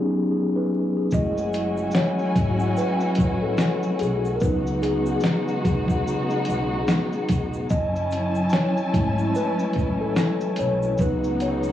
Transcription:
0.00 0.80 F#3 medium
0.00 0.81 B3 medium
0.00 0.82 C#4 medium
0.00 0.83 D#4 medium
0.00 1.14 G4 medium
0.00 0.30 G#4 medium
0.32 0.53 G#4 medium
0.56 0.94 G#4 medium
0.56 0.94 B4 medium
0.97 1.35 G#4 medium
1.11 1.84 F#1 loud
1.11 4.38 C#4 medium
1.11 4.38 E4 medium
1.11 4.38 F#4 medium
1.11 kick loud
1.11 shaker medium
1.13 4.39 F#3 medium
1.13 1.70 G#3 medium
1.13 1.71 A3 soft
1.13 1.71 E4 medium
1.13 1.98 D#5 medium
1.13 4.39 G#5 medium
1.13 shaker medium
1.38 shaker medium
1.53 closed hi-hat medium
1.53 shaker soft
1.77 shaker soft
1.91 snare loud
1.91 shaker medium
1.95 2.80 C#5 loud
1.95 shaker medium
2.19 shaker soft
2.36 2.72 G#1 loud
2.36 kick medium
2.36 closed hi-hat medium
2.36 shaker soft
2.60 shaker soft
2.77 3.44 B4 medium
2.77 shaker medium
3.01 shaker soft
3.15 3.54 A1 loud
3.15 kick medium
3.15 closed hi-hat medium
3.15 shaker soft
3.20 shaker soft
3.42 4.02 A4 medium
3.58 snare loud
3.58 shaker medium
3.60 shaker medium
3.83 shaker soft
3.99 4.37 B1 medium
3.99 4.36 G#4 medium
3.99 closed hi-hat medium
3.99 shaker medium
4.03 shaker soft
4.25 shaker soft
4.35 4.41 A#4 medium
4.40 5.13 C#2 loud
4.40 7.66 C#3 medium
4.40 5.61 F#3 medium
4.40 7.67 G#3 medium
4.40 7.66 B3 medium
4.40 5.61 B3 soft
4.40 7.66 D#4 medium
4.40 7.67 F#4 medium
4.40 4.60 B4 medium
4.40 kick medium
4.40 shaker medium
4.43 5.61 D#4 medium
4.43 shaker medium
4.67 shaker medium
4.82 7.25 G#4 medium
4.82 closed hi-hat medium
4.82 shaker soft
5.06 shaker medium
5.20 snare loud
5.20 shaker medium
5.25 shaker medium
5.48 shaker soft
5.65 6.01 B1 medium
5.65 kick medium
5.65 closed hi-hat medium
5.65 shaker soft
5.88 kick medium
5.88 shaker soft
6.07 shaker medium
6.30 shaker medium
6.45 6.83 B1 medium
6.45 closed hi-hat medium
6.45 shaker soft
6.50 shaker soft
6.88 snare medium
6.88 shaker medium
6.90 shaker medium
7.13 shaker soft
7.29 7.65 E1 medium
7.29 kick medium
7.29 closed hi-hat medium
7.29 shaker medium
7.31 shaker soft
7.53 shaker medium
7.69 8.42 F#1 loud
7.69 10.95 F#3 medium
7.69 10.95 C#4 medium
7.69 10.95 E4 medium
7.69 8.55 D#5 medium
7.69 10.95 G#5 medium
7.69 10.95 A5 medium
7.69 kick loud
7.69 shaker medium
7.96 shaker medium
8.11 closed hi-hat medium
8.11 shaker soft
8.35 shaker medium
8.49 snare loud
8.49 shaker medium
8.53 9.31 C#5 loud
8.53 shaker medium
8.77 shaker soft
8.93 9.29 G#1 medium
8.93 10.13 G#3 medium
8.93 10.13 A3 medium
8.93 10.14 E4 medium
8.93 kick medium
8.93 closed hi-hat medium
8.93 shaker soft
9.18 shaker soft
9.35 10.02 B4 loud
9.35 shaker medium
9.36 shaker medium
9.59 shaker medium
9.73 10.12 A1 medium
9.73 kick medium
9.73 closed hi-hat medium
9.73 shaker soft
9.78 shaker soft
10.01 10.60 A4 medium
10.16 snare medium
10.16 shaker medium
10.41 shaker soft
10.56 10.94 B1 medium
10.56 11.01 C#5 medium
10.56 closed hi-hat medium
10.56 shaker soft
10.60 shaker medium
10.82 shaker medium
10.98 11.71 C#2 loud
10.98 11.72 C#3 medium
10.98 11.72 F#3 soft
10.98 11.72 G#3 medium
10.98 11.72 B3 medium
10.98 11.72 B3 soft
10.98 11.72 D#4 medium
10.98 11.72 F#4 medium
10.98 11.19 B4 medium
10.98 kick loud
10.98 shaker medium
11.01 11.72 D#4 medium
11.01 shaker medium
11.24 shaker soft
11.40 11.72 C#5 medium
11.40 closed hi-hat medium
11.40 shaker soft
11.63 shaker soft

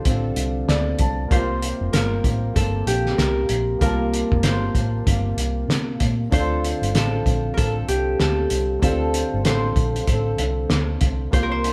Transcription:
0.00 1.25 A3 medium
0.00 1.26 D4 medium
0.00 1.27 F4 medium
0.00 0.63 G4 medium
0.00 1.02 A4 medium
0.00 1.32 C5 medium
0.00 0.67 D5 medium
0.04 0.31 A1 medium
0.04 1.30 D3 medium
0.04 1.32 C4 medium
0.04 kick loud
0.04 closed hi-hat medium
0.10 1.33 F4 soft
0.10 1.34 A4 medium
0.36 0.62 C2 loud
0.36 closed hi-hat medium
0.68 0.93 D2 medium
0.68 0.97 D5 medium
0.68 snare loud
0.68 closed hi-hat medium
0.99 1.25 C2 medium
0.99 1.29 A5 medium
0.99 kick medium
0.99 closed hi-hat medium
1.28 1.71 C2 medium
1.28 1.91 C3 medium
1.28 1.93 G3 medium
1.28 3.76 A#3 medium
1.28 3.77 F4 medium
1.28 3.78 G4 medium
1.28 3.30 C5 loud
1.28 kick loud
1.28 closed hi-hat medium
1.33 1.94 A#3 medium
1.33 1.96 F4 medium
1.33 3.79 C5 medium
1.62 closed hi-hat medium
1.81 1.91 F1 medium
1.93 2.18 G1 medium
1.93 2.53 C3 medium
1.93 2.55 G3 medium
1.93 2.57 A#3 medium
1.93 2.59 F4 medium
1.93 2.62 A#4 medium
1.93 snare loud
1.93 closed hi-hat loud
2.24 2.49 A1 medium
2.24 kick medium
2.24 closed hi-hat medium
2.54 2.81 G1 medium
2.54 3.79 C3 medium
2.54 3.81 G3 soft
2.54 3.24 A4 medium
2.54 kick medium
2.54 closed hi-hat medium
2.59 3.81 A#3 soft
2.59 3.82 F4 soft
2.86 3.12 A#1 loud
2.86 5.22 G4 medium
2.86 closed hi-hat medium
3.06 snare soft
3.18 3.44 C2 medium
3.18 3.81 A#4 medium
3.18 snare loud
3.18 closed hi-hat medium
3.49 3.75 A#1 medium
3.49 closed hi-hat medium
3.79 4.21 C2 medium
3.79 4.42 C3 medium
3.79 4.44 G3 medium
3.79 6.27 A#3 medium
3.79 4.45 A#3 medium
3.79 6.27 F4 soft
3.79 6.28 G4 soft
3.79 5.94 A#4 medium
3.79 kick loud
3.79 closed hi-hat medium
3.83 4.47 F4 medium
3.83 6.29 A5 medium
4.14 closed hi-hat medium
4.32 4.43 F1 medium
4.32 kick medium
4.43 4.69 G1 medium
4.43 5.03 C3 medium
4.43 5.07 G3 medium
4.43 5.08 A#3 medium
4.43 5.11 F4 medium
4.43 6.33 C5 medium
4.43 snare medium
4.43 closed hi-hat medium
4.75 5.00 A1 medium
4.75 kick medium
4.75 closed hi-hat medium
5.04 5.32 G1 medium
5.04 6.30 C3 soft
5.04 6.33 G3 soft
5.04 kick loud
5.04 closed hi-hat medium
5.10 6.31 A#3 medium
5.10 6.32 F4 soft
5.37 5.63 C2 medium
5.37 closed hi-hat medium
5.68 5.94 C3 medium
5.68 snare loud
5.68 closed hi-hat medium
6.00 6.26 A#2 medium
6.00 kick medium
6.00 closed hi-hat medium
6.30 6.72 D2 loud
6.30 6.92 D3 medium
6.30 8.77 A3 medium
6.30 6.94 C4 medium
6.30 8.78 D4 medium
6.30 6.40 E4 soft
6.30 6.96 F4 medium
6.30 6.95 A4 medium
6.30 8.31 C5 medium
6.30 kick loud
6.30 closed hi-hat medium
6.35 8.80 C5 medium
6.39 8.81 F4 soft
6.64 closed hi-hat medium
6.82 6.92 G1 medium
6.82 closed hi-hat soft
6.93 7.19 A1 medium
6.93 7.55 D3 medium
6.93 7.59 C4 medium
6.93 7.61 F4 medium
6.93 7.57 A4 medium
6.93 7.59 A4 medium
6.93 snare loud
6.93 closed hi-hat medium
7.26 7.51 A#1 medium
7.26 kick medium
7.26 closed hi-hat medium
7.54 7.82 A1 medium
7.54 8.81 D3 soft
7.54 8.20 A4 medium
7.54 7.63 A#4 medium
7.54 kick medium
7.54 closed hi-hat medium
7.59 8.82 C4 soft
7.59 8.83 F4 soft
7.64 8.83 A4 medium
7.88 8.14 C2 medium
7.88 10.24 G4 medium
7.88 closed hi-hat medium
8.20 8.45 D2 medium
8.20 8.82 A4 loud
8.20 snare medium
8.20 closed hi-hat medium
8.50 8.76 C2 medium
8.50 closed hi-hat medium
8.79 9.23 D2 medium
8.79 9.42 D3 medium
8.79 11.27 A3 medium
8.79 9.44 C4 medium
8.79 11.28 D4 soft
8.79 11.29 F4 soft
8.79 11.02 A4 medium
8.79 kick loud
8.79 closed hi-hat medium
8.84 9.45 F4 medium
8.84 9.45 A4 medium
8.84 11.30 C5 medium
9.14 closed hi-hat medium
9.33 9.43 G1 medium
9.44 9.71 A1 medium
9.44 10.03 D3 medium
9.44 10.07 C4 medium
9.44 10.10 F4 medium
9.44 10.08 A4 medium
9.44 11.33 C5 medium
9.44 snare loud
9.44 closed hi-hat medium
9.75 10.01 A#1 medium
9.75 kick medium
9.75 closed hi-hat medium
9.96 closed hi-hat soft
10.04 10.33 A1 medium
10.04 11.31 D3 soft
10.04 11.33 C4 medium
10.04 kick medium
10.04 closed hi-hat medium
10.10 11.34 F4 soft
10.10 11.35 A4 medium
10.38 10.64 C2 medium
10.38 closed hi-hat medium
10.70 10.96 D2 medium
10.70 snare loud
10.70 closed hi-hat medium
11.01 11.27 C2 medium
11.01 kick medium
11.01 closed hi-hat medium
11.31 11.73 C2 loud
11.31 11.73 C3 medium
11.31 11.73 G3 medium
11.31 11.73 A#3 medium
11.31 11.73 F4 medium
11.31 11.73 G4 soft
11.31 11.51 C5 loud
11.31 kick loud
11.31 closed hi-hat medium
11.36 11.73 C5 medium
11.43 11.73 A#4 medium
11.51 11.73 C5 loud
11.64 closed hi-hat medium

